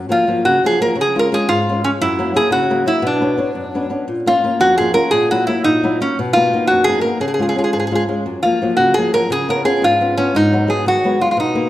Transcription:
0.09 nylon-string guitar F3 F#3 A#3, resonator guitar played with a steel bar F4
0.27 nylon-string guitar F3 F#3 A#3
0.45 nylon-string guitar C#3, resonator guitar played with a steel bar F#4
0.64 nylon-string guitar F3 F#3 A#3, resonator guitar played with a steel bar G#4
0.80 nylon-string guitar F3 F#3 A#3, resonator guitar played with a steel bar A#4
0.95 nylon-string guitar C#3
1.01 resonator guitar played with a steel bar G#4
1.15 nylon-string guitar G#3 C#4 F4, resonator guitar played with a steel bar A#4
1.32 nylon-string guitar G#3 C#4 F4, resonator guitar played with a steel bar G#4
1.48 nylon-string guitar G#2, resonator guitar played with a steel bar F4
1.69 nylon-string guitar G#3 C#4 F4
1.84 nylon-string guitar G#3 C#4 F4, resonator guitar played with a steel bar C#4
2.01 nylon-string guitar F#2, resonator guitar played with a steel bar E4
2.19 nylon-string guitar F#3 A#3 E4
2.34 nylon-string guitar F#3 A#3 E4, resonator guitar played with a steel bar G#4
2.51 nylon-string guitar C#3, resonator guitar played with a steel bar F#4
2.70 nylon-string guitar F#3 A#3 E4
2.86 nylon-string guitar F#3 A#3 E4, resonator guitar played with a steel bar E4
3.02 nylon-string guitar B2
3.07 resonator guitar played with a steel bar D4
3.21 nylon-string guitar B3 D4 C#5
3.37 nylon-string guitar B3 D4 C#5
3.55 nylon-string guitar F#2
3.75 nylon-string guitar B3 C#4 D4
3.90 nylon-string guitar B3 C#4 D4
4.08 nylon-string guitar A#2
4.26 nylon-string guitar A#3 C#4 F4, resonator guitar played with a steel bar F4
4.44 nylon-string guitar A#3 C#4 F4
4.60 nylon-string guitar F2, resonator guitar played with a steel bar F#4
4.78 nylon-string guitar A#3 C#4 F4, resonator guitar played with a steel bar G#4
4.94 nylon-string guitar A#3 C#4 F4, resonator guitar played with a steel bar A#4
5.11 nylon-string guitar A#2, resonator guitar played with a steel bar G#4
5.31 nylon-string guitar F#3 A#3 E4, resonator guitar played with a steel bar F#4
5.47 nylon-string guitar F#3 A#3 E4, resonator guitar played with a steel bar E4
5.64 nylon-string guitar A#2, resonator guitar played with a steel bar D#4
5.83 nylon-string guitar F#3 A#3 E4
6.00 nylon-string guitar F#3 A#3 E4, resonator guitar played with a steel bar C#4
6.19 nylon-string guitar B2
6.33 nylon-string guitar A#3 B3 D#4, resonator guitar played with a steel bar F4
6.53 nylon-string guitar A#3 B3 D#4
6.67 nylon-string guitar F#2, resonator guitar played with a steel bar F#4
6.84 nylon-string guitar A#3 B3, resonator guitar played with a steel bar G#4
6.89 nylon-string guitar D#4
7.01 nylon-string guitar A#3 B3 D#4, resonator guitar played with a steel bar A#4
7.20 nylon-string guitar C#3, resonator guitar played with a steel bar G#4
7.28 resonator guitar played with a steel bar G#4
7.34 resonator guitar played with a steel bar G#4
7.39 nylon-string guitar G#3 C#4 F4, resonator guitar played with a steel bar G#4
7.49 resonator guitar played with a steel bar G#4
7.56 nylon-string guitar G#3 C#4 F4, resonator guitar played with a steel bar G#4
7.64 resonator guitar played with a steel bar G#4
7.73 nylon-string guitar G#2, resonator guitar played with a steel bar G#4
7.80 resonator guitar played with a steel bar G#4
7.87 resonator guitar played with a steel bar G#4
7.91 nylon-string guitar G#3 C#4 F4
7.95 resonator guitar played with a steel bar G#4
8.09 nylon-string guitar G#3 C#4 F4
8.26 nylon-string guitar F#2
8.43 nylon-string guitar F3 F#3 A#3, resonator guitar played with a steel bar F4
8.62 nylon-string guitar F3 F#3 A#3
8.77 nylon-string guitar C#3, resonator guitar played with a steel bar F#4
8.94 nylon-string guitar F3 F#3 A#3, resonator guitar played with a steel bar G#4
9.14 nylon-string guitar F3 F#3 A#3, resonator guitar played with a steel bar A#4
9.30 nylon-string guitar C#3, resonator guitar played with a steel bar G#4
9.49 nylon-string guitar B3 C#4 F4, resonator guitar played with a steel bar A#4
9.65 nylon-string guitar B3 C#4 F4, resonator guitar played with a steel bar G#4
9.82 nylon-string guitar G#2, resonator guitar played with a steel bar F4
10.01 nylon-string guitar B3 C#4 F4
10.17 nylon-string guitar B3 C#4 F4, resonator guitar played with a steel bar C#4
10.35 nylon-string guitar G#2, resonator guitar played with a steel bar D#4
10.53 nylon-string guitar F#3 G#3 B3
10.67 nylon-string guitar F#3 G#3 B3, resonator guitar played with a steel bar G#4
10.86 nylon-string guitar D#3, resonator guitar played with a steel bar F#4
11.04 nylon-string guitar F#3 G#3 B3
11.20 nylon-string guitar F#3 G#3 B3, resonator guitar played with a steel bar F4
11.31 resonator guitar played with a steel bar F4
11.37 nylon-string guitar B2, resonator guitar played with a steel bar D#4
11.55 nylon-string guitar A#3 B3 D#4

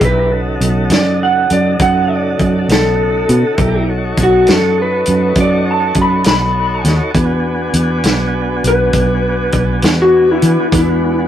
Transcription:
0.01 fingered electric bass B1, tonewheel organ D4 E4 G4 A#4, electric slide guitar B4, kick, closed hi-hat
0.31 tonewheel organ C#3 D#4 F#4 A4
0.61 fingered electric bass B1, closed hi-hat
0.90 fingered electric bass F#2, snare, closed hi-hat
0.94 electric slide guitar D5
1.23 electric slide guitar F#5
1.50 fingered electric bass F#2, electric slide guitar D5, closed hi-hat
1.79 fingered electric bass F#2, electric slide guitar F#5, kick, closed hi-hat
2.13 electric slide guitar D5
2.39 fingered electric bass F#2, kick, closed hi-hat
2.69 fingered electric bass B1, electric slide guitar A4, snare, closed hi-hat
3.29 fingered electric bass B2, closed hi-hat
3.56 fingered electric bass B1, tonewheel organ E4 G4 A#4 D5, kick, closed hi-hat
3.88 tonewheel organ D#4 F#4 A4 C#5
4.17 fingered electric bass B1, kick, closed hi-hat
4.23 electric slide guitar F#4
4.47 fingered electric bass F#2, snare, closed hi-hat
4.51 electric slide guitar A4
4.82 electric slide guitar B4
5.06 fingered electric bass F#2, closed hi-hat
5.35 fingered electric bass F#2, kick, closed hi-hat
5.40 electric slide guitar D5
5.71 electric slide guitar A5
5.95 fingered electric bass F#2, kick, closed hi-hat
6.02 electric slide guitar B5
6.24 fingered electric bass B1, electric slide guitar B5, snare, closed hi-hat
6.84 fingered electric bass D#2, snare, closed hi-hat
7.14 fingered electric bass E2, tonewheel organ B3 D4 F#4 G#4, kick, closed hi-hat
7.74 fingered electric bass E2, closed hi-hat
8.04 fingered electric bass B1, snare, closed hi-hat
8.64 fingered electric bass B1, electric slide guitar B4, closed hi-hat
8.93 fingered electric bass B1, kick, closed hi-hat
9.52 fingered electric bass B1, kick, closed hi-hat
9.82 fingered electric bass E2, snare, closed hi-hat
10.02 electric slide guitar F#4
10.32 electric slide guitar E4
10.42 fingered electric bass E3, closed hi-hat
10.71 fingered electric bass E2, tonewheel organ G#3 B3 D4 F#4, kick, closed hi-hat
10.78 electric slide guitar E4

